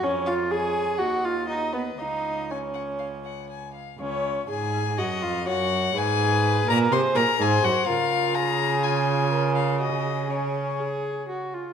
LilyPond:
<<
  \new Staff \with { instrumentName = "Violin" } { \time 4/4 \key cis \mixolydian \tempo 4 = 123 cis''4 cis''4 dis''4 dis''4 | eis''4 gis''8 fis''8 eis''8 fis''8 gis''8 eis''8 | cis''4 gis''4 fis''8 eis''8 fis''4 | gis''4. ais''8 bis''8 ais''8 gis''8 fis''8 |
eis''4 ais''4 gis''4. eis''8 | dis''4 cis''2~ cis''8 r8 | }
  \new Staff \with { instrumentName = "Violin" } { \time 4/4 \key cis \mixolydian cis''8 eis''8 gis''4 fis''8 eis''8 dis''8 b'8 | dis''4 cis''2 r4 | r2 dis''4 cis''4 | b'2 gis'4 bis'4 |
ais'4 gis'2 ais'4 | gis'2.~ gis'8 r8 | }
  \new Staff \with { instrumentName = "Viola" } { \time 4/4 \key cis \mixolydian cis'8 eis'8 gis'4 fis'8 eis'8 dis'8 b8 | dis'4 cis'2 r4 | cis'4 gis'4 fis'8 eis'8 fis'4 | gis'4. ais'8 bis'8 ais'8 gis'8 fis'8 |
eis'2 eis'2 | fis'4 cis'4 gis'4 fis'8 eis'8 | }
  \new Staff \with { instrumentName = "Cello" } { \clef bass \time 4/4 \key cis \mixolydian eis,2 dis,2 | cis,2.~ cis,8 r8 | cis,4 gis,4 fis,8 eis,8 fis,4 | gis,4. ais,8 bis,8 ais,8 gis,8 fis,8 |
cis1~ | cis2.~ cis8 r8 | }
>>